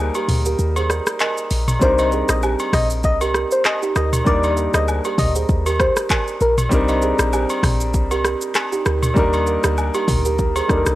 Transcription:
Already playing: 808-style bass D2, grand piano G3 A#3 D#4 A#4
0.15 kalimba G4 A#4, high agogo, shaker
0.28 808-style bass D2, mid tom, open hi-hat, shaker
0.46 kalimba G4 A#4, shaker
0.59 808-style bass D#2, shaker
0.76 kalimba G#4 C5, high agogo, shaker
0.90 kalimba A#4 D5, cross-stick, shaker
1.07 cross-stick, shaker
1.20 kalimba A#4 D#5, clap, high agogo, low woodblock, shaker
1.38 shaker
1.51 808-style bass A#1, open hi-hat, shaker
1.68 mid tom, high agogo, shaker
1.79 808-style bass C2, grand piano G3 C4 D4 D#4, soft synth lead C5, kick, shaker
1.84 grand piano A#4
1.98 kalimba C5 D#5, high agogo, shaker
2.12 kalimba G#4 C5, shaker
2.29 808-style bass A#1, soft synth lead D#5, cross-stick, shaker
2.43 kalimba G4 C5, low woodblock, shaker
2.59 high agogo, shaker
2.73 808-style bass A#1, soft synth lead D#5, kick, cross-stick, mid tom, open hi-hat, shaker
2.90 shaker
3.03 808-style bass C2, soft synth lead D#5, kick, shaker
3.21 kalimba G4 A#4, high agogo, shaker
3.34 kalimba G4 A#4, cross-stick, shaker
3.51 soft synth lead C5, shaker
3.65 soft synth lead D#5, cross-stick, clap, high agogo, low woodblock, shaker
3.82 kalimba D#4 G4, shaker
3.96 808-style bass D2, kalimba G4 A#4, soft synth lead D#5, cross-stick, shaker
4.13 mid tom, high agogo, shaker
4.24 808-style bass D#2, grand piano G3 A#3 D4 D#4, kalimba G4 A#4, soft synth lead D5, kick, shaker
4.29 grand piano A#4
4.43 high agogo, shaker
4.57 kalimba A#4 D5, shaker
4.74 808-style bass D2, kalimba G#4 C5, soft synth lead D#5, cross-stick, shaker
4.88 low woodblock, shaker
5.05 kalimba G4 A#4, high agogo, shaker
5.18 808-style bass D2, soft synth lead D#5, kick, mid tom, open hi-hat, shaker
5.35 kalimba G#4 C5, shaker
5.49 808-style bass D#2, kick, shaker
5.66 kalimba G4 A#4, high agogo, shaker
5.80 kalimba G4 A#4, soft synth lead C5, kick, cross-stick, shaker
5.96 cross-stick, shaker
6.10 kalimba A#4 D5, kick, clap, high agogo, low woodblock, shaker
6.28 shaker
6.41 808-style bass A#1, soft synth lead A#4, shaker
6.58 mid tom, high agogo, shaker
6.69 808-style bass C2, grand piano G3 C4 D4 D#4, kick, shaker
6.74 grand piano A#4
6.88 kalimba C5 D#5, high agogo, shaker
7.02 kalimba G#4 C5, shaker
7.19 808-style bass A#1, cross-stick, shaker
7.33 kalimba G4 C5, low woodblock, shaker
7.49 high agogo, shaker
7.63 808-style bass A#1, kick, cross-stick, mid tom, open hi-hat, shaker
7.80 shaker
7.94 808-style bass C2, kick, shaker
8.11 kalimba G4 A#4, high agogo, shaker
8.25 kalimba G4 A#4, cross-stick, shaker
8.41 shaker
8.55 cross-stick, clap, high agogo, low woodblock, shaker
8.72 kalimba D#4 G4, shaker
8.86 808-style bass D2, kalimba G4 A#4, cross-stick, shaker
9.03 mid tom, high agogo, shaker
9.14 808-style bass D#2, grand piano G3 A#3 D4 D#4, kalimba G4 A#4, kick, shaker
9.19 grand piano A#4
9.33 high agogo, shaker
9.47 kalimba A#4 D5, shaker
9.64 808-style bass D2, kalimba G4 A#4, cross-stick, shaker
9.78 low woodblock, shaker
9.94 kalimba D#4 G4, high agogo, shaker
10.08 808-style bass D2, kick, mid tom, open hi-hat, shaker
10.25 kalimba G4 A#4, shaker
10.38 kick, shaker
10.56 kalimba G#4 C5, high agogo, shaker
10.68 808-style bass D#2, grand piano G3 A#3 D4 D#4 A4, kalimba A#4 D5, kick, cross-stick, shaker
10.77 grand piano A#4
10.86 808-style bass C2, cross-stick, shaker

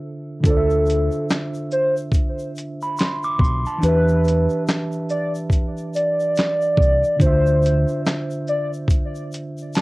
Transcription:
Already playing: tine electric piano D3 D4 F4 C5 E5
0.40 fingered electric bass D2, tine electric piano D3 D4, kick
0.45 tine electric piano F4 C5, soft synth lead A4, closed hi-hat, shaker
0.50 tine electric piano D5
0.57 tine electric piano E5
0.70 shaker
0.86 closed hi-hat, shaker
0.90 shaker
1.12 shaker
1.29 snare, clap, closed hi-hat, shaker
1.54 shaker
1.71 soft synth lead C5, shaker
1.97 shaker
2.12 kick, closed hi-hat, shaker
2.39 shaker
2.56 closed hi-hat, shaker
2.58 shaker
2.81 tine electric piano B5, shaker
2.97 tine electric piano C6, snare, closed hi-hat, shaker
3.02 clap
3.23 tine electric piano D6, shaker
3.39 fingered electric bass B1, tine electric piano C6, kick
3.44 shaker
3.66 tine electric piano A5, shaker
3.78 tine electric piano E3 D4
3.82 fingered electric bass E2, tine electric piano G4 B4, soft synth lead B4, closed hi-hat, shaker
3.88 tine electric piano E5
4.08 shaker
4.24 closed hi-hat, shaker
4.28 shaker
4.50 shaker
4.67 snare, clap, closed hi-hat, shaker
4.92 shaker
5.09 soft synth lead D5, shaker
5.35 shaker
5.50 kick, closed hi-hat, shaker
5.77 shaker
5.94 soft synth lead D5, closed hi-hat, shaker
5.96 shaker
6.20 shaker
6.36 snare, closed hi-hat, shaker
6.40 clap
6.61 shaker
6.77 fingered electric bass C2, kick
6.82 shaker
7.04 shaker
7.17 fingered electric bass D2, tine electric piano D3 D4, kick
7.21 tine electric piano F4 C5, soft synth lead C5, closed hi-hat, shaker
7.27 tine electric piano E5
7.46 shaker
7.62 closed hi-hat, shaker
7.66 shaker
7.88 shaker
8.06 snare, clap, closed hi-hat, shaker
8.31 shaker
8.47 soft synth lead D5, shaker
8.73 shaker
8.88 kick, closed hi-hat, shaker
9.15 shaker
9.32 closed hi-hat, shaker
9.34 shaker
9.58 shaker
9.73 tine electric piano A5, snare, closed hi-hat, shaker
9.78 clap

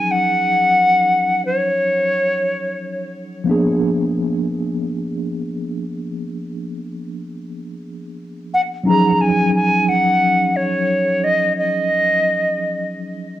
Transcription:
Already playing: tine electric piano F3 F#3 C#4 D#4 G#4, flute G#5
0.11 flute F#5
1.46 flute C#5
3.44 tine electric piano F3 A#3 B3
3.49 tine electric piano D4 G#4
8.54 flute F#5
8.83 tine electric piano F#3 C#4 D#4
8.88 tine electric piano F3 G#4, flute A#5
9.15 flute A#5
9.21 flute G#5
9.55 flute G#5
9.89 flute F#5
10.56 flute C#5
11.24 flute D#5
11.57 flute D#5

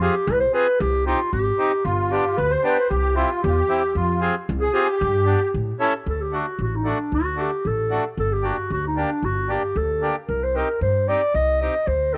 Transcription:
0.01 accordion C4 F4 G#4, clarinet G4
0.27 upright bass C2, clarinet B4
0.40 clarinet C5
0.53 accordion C4 F4 G#4, clarinet B4
0.80 upright bass C2, clarinet G4
1.06 accordion C4 D#4 G4, clarinet F4
1.33 upright bass G#1, clarinet G4
1.58 accordion C4 D#4 G4
1.85 upright bass G1, accordion F4, clarinet F4
2.11 accordion B3 D4 G4, clarinet G4
2.37 upright bass D2, accordion B4, clarinet B4
2.50 accordion C5, clarinet C5
2.64 accordion B3 D4 G4, clarinet B4
2.89 upright bass C2, accordion G4, clarinet G4
3.15 accordion C4 E4 F4 G4, clarinet F4
3.42 upright bass E2, accordion G4, clarinet G4
3.48 accordion F4
3.57 accordion G4
3.69 accordion C4 E4 G4
3.95 upright bass F2, accordion F4, clarinet F4
4.21 accordion C4 F4 G#4
4.49 upright bass C2
4.60 clarinet G#4, accordion G#4
4.73 accordion C4 F4 G4 G#4, clarinet G4
4.81 accordion G#4
4.88 accordion G4
5.01 upright bass G2
5.26 accordion B3 D4 G4
5.54 upright bass A2
5.80 accordion C#4 E4 A4
6.06 upright bass D2, clarinet A4
6.21 clarinet G4
6.32 accordion A3 D4 F#4, clarinet F#4
6.59 upright bass A1, clarinet F#4
6.76 clarinet D#4
6.84 accordion A3 D4 F#4, clarinet D4
7.12 upright bass D2, clarinet F#4
7.36 accordion A3 D4 F#4
7.41 clarinet G4
7.65 upright bass A1, clarinet A4
7.90 accordion A3 D4 F#4
8.17 upright bass G1, clarinet A4
8.32 clarinet G4
8.42 accordion A#3 D4 G4, clarinet F#4
8.70 upright bass D2, clarinet F#4
8.87 clarinet D#4
8.96 accordion A#3 D4 G4, clarinet D4
9.23 upright bass G1, clarinet F#4
9.49 accordion A#3 D4 G4, clarinet G4
9.76 upright bass D2, clarinet A4
10.02 accordion A#3 D4 G4
10.29 upright bass C2, clarinet A#4
10.43 clarinet C5
10.55 accordion C4 D#4 G4, clarinet A#4
10.81 upright bass G2, clarinet C5
11.08 accordion C4 D#4 G4, clarinet D5
11.34 upright bass C2, clarinet D#5
11.61 accordion C4 D#4 G4, clarinet D#5
11.87 upright bass D2, clarinet C5
12.13 accordion C4 D#4, clarinet A4

